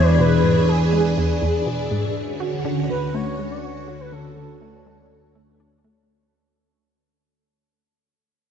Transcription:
0.00 0.15 E2 medium
0.00 2.13 E2 medium
0.00 2.12 E3 medium
0.00 2.12 D4 medium
0.00 2.12 G#4 medium
0.00 0.16 C#5 loud
0.19 0.40 B2 medium
0.19 0.70 B4 loud
0.44 0.58 G#2 medium
0.69 1.67 G#4 medium
0.93 1.07 G#3 medium
1.17 1.31 E2 loud
1.42 1.63 E2 medium
1.66 1.87 B2 medium
1.91 2.05 G#2 medium
2.16 6.07 D2 medium
2.16 6.05 D3 medium
2.16 6.05 C#4 medium
2.16 6.05 F#4 medium
2.40 2.54 F#4 medium
2.65 2.79 D3 loud
2.89 3.10 D3 medium
2.89 3.16 B4 loud
3.14 3.35 A3 medium
3.14 3.53 C#5 loud
3.39 3.53 G#3 medium
3.51 3.65 D5 loud
3.63 4.00 C#5 loud
3.88 4.02 F#4 medium
4.00 4.14 B4 medium
4.12 4.26 D3 loud
4.12 5.60 A4 loud
4.37 4.58 D3 medium
4.62 4.83 A3 medium
4.86 5.00 G#3 medium
5.35 5.56 A3 medium
5.60 5.74 D4 medium
5.84 6.05 A3 medium

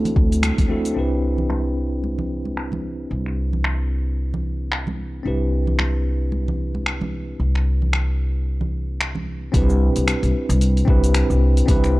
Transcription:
0.00 0.68 C4 medium
0.00 0.69 D4 medium
0.00 0.70 E4 medium
0.00 0.70 F#4 medium
0.00 0.71 A4 medium
0.05 open hi-hat soft
0.05 low conga medium
0.05 cabasa soft
0.16 0.49 D2 medium
0.16 kick loud
0.32 open hi-hat soft
0.32 cabasa medium
0.42 finger snap loud
0.42 open hi-hat medium
0.42 high conga medium
0.42 cabasa medium
0.58 0.90 D2 medium
0.58 kick medium
0.58 open hi-hat soft
0.58 high conga medium
0.58 low conga medium
0.58 cabasa soft
0.68 0.93 C4 medium
0.68 0.94 D4 medium
0.68 0.94 E4 medium
0.68 0.94 F#4 medium
0.68 0.94 A4 medium
0.85 open hi-hat soft
0.85 cabasa medium
0.94 3.08 C2 medium
0.94 5.21 C4 medium
0.94 5.22 D4 medium
0.94 5.22 E4 medium
0.94 5.23 G4 medium
0.99 5.24 B4 medium
1.38 low conga medium
1.50 finger snap medium
1.50 high conga medium
2.04 high conga medium
2.18 low conga medium
2.45 high conga medium
2.57 finger snap medium
2.72 high conga medium
2.72 low conga medium
3.11 5.23 C2 medium
3.26 finger snap soft
3.53 low conga medium
3.64 finger snap medium
4.34 low conga medium
4.72 finger snap medium
4.87 high conga medium
4.87 low conga medium
5.23 7.37 C2 medium
5.23 9.50 C4 medium
5.23 9.51 D4 medium
5.23 9.51 E4 medium
5.23 9.52 G4 medium
5.28 9.52 B4 medium
5.67 low conga medium
5.79 finger snap medium
5.79 high conga medium
6.32 high conga medium
6.48 low conga medium
6.75 high conga medium
6.86 finger snap medium
7.01 high conga medium
7.01 low conga medium
7.40 9.52 C2 medium
7.55 finger snap soft
7.82 low conga medium
7.93 finger snap medium
8.61 low conga medium
9.01 finger snap medium
9.15 high conga medium
9.15 low conga medium
9.52 9.87 C2 loud
9.52 10.84 C4 medium
9.52 10.85 D4 medium
9.52 10.85 E4 medium
9.52 10.86 G4 medium
9.52 kick loud
9.52 open hi-hat medium
9.52 cabasa soft
9.57 10.86 B4 medium
9.70 cabasa soft
9.96 10.12 C2 medium
9.96 open hi-hat soft
9.96 cabasa medium
10.08 finger snap loud
10.08 open hi-hat medium
10.08 cabasa medium
10.23 10.30 C2 medium
10.23 open hi-hat soft
10.23 cabasa soft
10.49 10.81 C2 loud
10.49 open hi-hat soft
10.49 cabasa medium
10.61 open hi-hat medium
10.61 cabasa medium
10.77 open hi-hat soft
10.77 cabasa soft
10.85 11.21 C2 medium
10.85 11.64 C4 medium
10.85 11.65 D4 medium
10.85 11.65 E4 medium
10.85 11.66 G4 medium
10.85 kick loud
10.90 11.66 B4 loud
11.04 open hi-hat soft
11.04 cabasa medium
11.14 finger snap loud
11.14 open hi-hat medium
11.14 cabasa medium
11.30 11.61 C2 medium
11.30 cabasa soft
11.57 open hi-hat soft
11.57 cabasa medium
11.66 12.00 C2 loud
11.66 12.00 C4 medium
11.66 12.00 D4 medium
11.66 12.00 E4 medium
11.66 12.00 G4 medium
11.66 kick loud
11.66 open hi-hat medium
11.66 cabasa medium
11.70 12.00 B4 loud
11.84 finger snap soft
11.84 cabasa soft

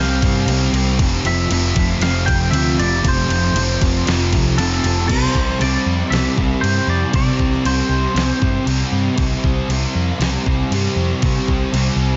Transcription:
0.00 0.20 C2 medium
0.00 0.47 C3 medium
0.00 0.25 G3 medium
0.00 0.23 C4 loud
0.00 0.69 F5 medium
0.22 0.46 G2 medium
0.22 0.50 G3 medium
0.22 0.51 C4 medium
0.22 kick medium
0.22 crash medium
0.46 0.72 C2 medium
0.46 0.98 C3 medium
0.46 0.76 G3 medium
0.46 crash medium
0.51 0.72 C4 medium
0.72 0.98 C2 medium
0.72 1.02 G3 medium
0.72 4.23 C4 medium
0.72 crash medium
0.99 1.23 F1 medium
0.99 1.49 F2 loud
0.99 1.28 C3 loud
0.99 1.24 F3 loud
0.99 kick loud
0.99 crash medium
1.24 1.49 F1 medium
1.24 1.52 F3 medium
1.24 2.02 E5 medium
1.24 crash medium
1.29 1.50 C3 medium
1.49 1.75 F1 medium
1.49 2.00 F2 medium
1.49 1.78 C3 medium
1.49 1.74 F3 medium
1.49 crash medium
1.75 1.98 F1 loud
1.75 2.02 C3 medium
1.75 2.03 F3 medium
1.75 kick medium
1.75 crash medium
1.90 snare soft
1.99 2.50 F1 loud
1.99 2.52 F2 medium
1.99 2.26 F5 loud
1.99 snare loud
1.99 crash medium
2.03 2.31 C3 loud
2.03 2.27 F3 medium
2.26 2.55 F3 medium
2.26 2.50 G5 loud
2.26 kick medium
2.26 crash medium
2.32 2.54 C3 medium
2.51 2.77 D2 medium
2.51 3.03 F2 medium
2.51 2.78 E5 medium
2.51 crash medium
2.55 2.81 C3 medium
2.55 2.77 F3 medium
2.77 3.03 F1 medium
2.77 3.06 F3 medium
2.77 3.05 D5 medium
2.77 crash medium
2.82 3.04 C3 medium
3.04 3.29 F1 medium
3.04 3.54 F2 loud
3.04 3.32 C3 loud
3.04 3.28 F3 loud
3.04 kick loud
3.04 crash medium
3.08 4.05 C5 medium
3.29 3.53 F1 medium
3.29 3.56 C3 medium
3.29 3.58 F3 medium
3.29 crash medium
3.53 3.79 F1 medium
3.53 4.05 F2 medium
3.53 3.82 C3 medium
3.53 crash medium
3.59 3.79 F3 medium
3.80 4.06 F1 loud
3.80 4.07 C3 medium
3.80 4.09 F3 medium
3.80 kick medium
3.80 crash medium
4.06 4.32 F1 medium
4.06 4.56 F2 medium
4.06 4.35 C3 loud
4.06 4.31 F3 loud
4.06 snare loud
4.06 crash medium
4.32 4.57 C2 medium
4.32 4.59 F3 medium
4.32 kick medium
4.32 crash medium
4.36 4.58 C3 medium
4.57 4.83 F1 medium
4.57 5.07 F2 medium
4.57 4.85 C3 medium
4.57 4.82 F3 medium
4.57 5.07 A4 medium
4.57 crash medium
4.83 5.08 F1 medium
4.83 5.08 C3 medium
4.83 5.07 F3 medium
4.83 crash medium
5.08 5.25 C2 medium
5.08 5.59 C3 medium
5.08 5.61 G3 loud
5.08 5.61 C5 loud
5.08 kick loud
5.08 crash loud
5.08 crash medium
5.12 5.63 C4 loud
5.35 5.50 C2 medium
5.35 kick medium
5.49 snare soft
5.60 5.76 C2 medium
5.60 6.11 C3 medium
5.60 6.13 G3 medium
5.60 6.14 C4 medium
5.60 6.10 D5 medium
5.60 crash medium
5.86 6.02 F2 loud
6.10 6.26 C2 medium
6.10 6.62 C3 medium
6.10 6.41 G3 medium
6.10 6.61 E5 medium
6.10 snare loud
6.10 crash medium
6.15 6.37 C4 medium
6.37 6.53 C2 medium
6.37 6.65 C4 medium
6.37 kick medium
6.41 6.64 G3 medium
6.61 6.78 G2 medium
6.61 7.13 C3 medium
6.61 7.15 G3 medium
6.61 6.88 C5 medium
6.61 crash medium
6.66 7.16 C4 medium
6.87 7.03 F2 medium
6.87 7.14 D5 medium
7.13 7.29 C3 medium
7.13 7.64 C3 loud
7.13 7.65 G3 medium
7.13 7.67 C4 loud
7.13 7.66 D5 loud
7.13 kick loud
7.13 crash medium
7.39 7.55 C2 medium
7.39 kick medium
7.53 snare soft
7.64 7.80 C2 medium
7.64 8.14 C3 medium
7.64 8.15 G3 medium
7.64 8.18 C4 medium
7.64 8.64 C5 medium
7.64 crash medium
7.89 8.05 C2 medium
8.14 8.30 C2 medium
8.14 8.65 C3 medium
8.14 8.42 G3 medium
8.14 8.39 C4 loud
8.14 snare loud
8.14 crash medium
8.39 8.57 G2 medium
8.39 8.67 G3 medium
8.39 8.68 C4 medium
8.39 kick medium
8.65 8.82 C2 medium
8.65 9.16 C3 medium
8.65 9.18 G3 medium
8.65 9.20 C4 medium
8.65 crash medium
8.92 9.08 G2 medium
9.17 9.34 C2 medium
9.17 9.68 C3 medium
9.17 9.70 G3 loud
9.17 9.71 C4 loud
9.17 kick loud
9.17 crash medium
9.44 9.59 C2 medium
9.44 kick medium
9.68 9.84 C2 medium
9.68 10.18 C3 medium
9.68 10.20 G3 medium
9.68 10.22 C4 medium
9.68 crash medium
9.95 10.11 F2 medium
10.19 10.35 C2 medium
10.19 10.70 C3 medium
10.19 10.46 G3 medium
10.19 10.44 C4 loud
10.19 snare loud
10.19 crash medium
10.44 10.62 C2 medium
10.44 10.72 G3 medium
10.44 10.74 C4 medium
10.44 kick medium
10.70 10.86 G2 medium
10.70 11.21 C3 medium
10.70 11.22 G3 medium
10.70 11.25 C4 medium
10.70 crash medium
10.96 11.12 F2 medium
11.22 11.71 C3 loud
11.22 11.38 C3 medium
11.22 11.73 G3 loud
11.22 11.75 C4 loud
11.22 kick loud
11.22 crash medium
11.48 11.64 C2 medium
11.48 kick medium
11.72 11.88 C2 medium
11.72 12.17 C3 medium
11.72 12.17 G3 medium
11.72 12.17 C4 medium
11.72 crash medium
11.96 12.12 C2 medium

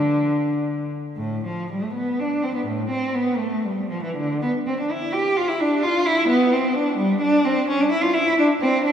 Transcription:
0.00 0.86 D3 medium
1.17 1.43 A2 medium
1.46 1.69 F3 medium
1.71 1.82 G3 medium
1.82 1.94 A3 medium
1.94 2.18 B3 medium
2.20 2.43 D4 medium
2.43 2.55 C4 medium
2.55 2.67 B3 medium
2.67 2.90 A2 medium
2.90 3.14 C4 medium
3.14 3.39 B3 medium
3.38 3.63 A3 medium
3.63 3.90 G3 medium
3.90 4.03 F3 medium
4.03 4.16 E3 medium
4.16 4.42 D3 medium
4.42 4.50 B3 medium
4.67 4.78 C4 medium
4.80 4.91 D4 medium
4.91 5.14 E4 medium
5.13 5.36 G4 medium
5.37 5.49 F4 medium
5.48 5.60 E4 medium
5.60 5.83 D4 medium
5.83 6.06 F4 medium
6.06 6.30 E4 medium
6.29 6.52 B3 medium
6.52 6.76 C4 medium
6.74 6.98 D4 medium
6.97 7.21 G3 medium
7.22 7.45 D4 medium
7.45 7.68 C4 medium
7.68 7.80 C#4 medium
7.80 7.92 D4 medium
7.91 8.03 E4 medium
8.03 8.15 F4 medium
8.14 8.38 E4 medium
8.39 8.47 D4 medium
8.61 8.85 C4 medium
8.85 8.92 D4 medium

